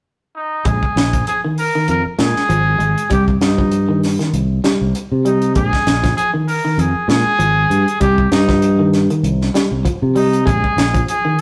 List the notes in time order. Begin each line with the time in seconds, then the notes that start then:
0.36 D#4
0.65 A#1 G#3 G#4, kick, closed hi-hat
0.83 kick
0.96 A#1, snare, closed hi-hat
1.13 kick, closed hi-hat
1.27 G#4, closed hi-hat
1.45 D#3
1.58 A#4, open hi-hat
1.75 D#3
1.88 F2 A#4, closed hi-hat
2.06 muted fingered electric bass stroke
2.19 A#2 G#3 G#4, snare, closed hi-hat
2.36 muted fingered electric bass stroke, snare
2.49 G#1 F3, closed hi-hat
2.79 G#1 G#3, closed hi-hat
2.98 closed hi-hat
3.10 C2 G3 G4, kick, closed hi-hat
3.28 kick
3.41 G2 D#4, snare, closed hi-hat
3.58 F3, kick
3.72 closed hi-hat
3.89 D#3
4.03 snare, open hi-hat
4.19 D#3, snare, closed hi-hat
4.33 C2, closed hi-hat
4.64 G3, snare, closed hi-hat
4.81 C2
4.95 closed hi-hat
5.12 C3
5.25 G3 D#4, closed hi-hat
5.42 closed hi-hat
5.55 A#1 G#3 G#4, kick, closed hi-hat
5.73 kick, snare
5.87 A#1, snare, closed hi-hat
6.03 F3, kick, snare, closed hi-hat
6.17 G#4, closed hi-hat
6.34 D#3
6.48 A#4, open hi-hat
6.65 D#3
6.78 F2 G#4, closed hi-hat
6.95 muted fingered electric bass stroke
7.08 A#2 G#3 G#4, snare, closed hi-hat
7.26 muted fingered electric bass stroke
7.39 G#1 F3, closed hi-hat
7.70 G2, closed hi-hat
7.88 closed hi-hat
8.00 C2 G3 G4, kick, closed hi-hat
8.18 kick
8.32 G2 D#4, snare, closed hi-hat
8.48 F3, kick, snare
8.62 closed hi-hat
8.79 D#3
8.93 snare, closed hi-hat
9.10 D#3, closed hi-hat
9.23 C2, closed hi-hat
9.42 snare
9.54 G3, snare, closed hi-hat
9.71 C2
9.85 F3, kick, closed hi-hat
10.02 C3
10.16 G3 D#4, open hi-hat
10.33 closed hi-hat
10.46 A#1 G#3 G#4, kick, closed hi-hat
10.64 kick
10.77 A#1, snare, closed hi-hat
10.94 F3, kick, closed hi-hat
11.08 G#4, closed hi-hat
11.25 D#3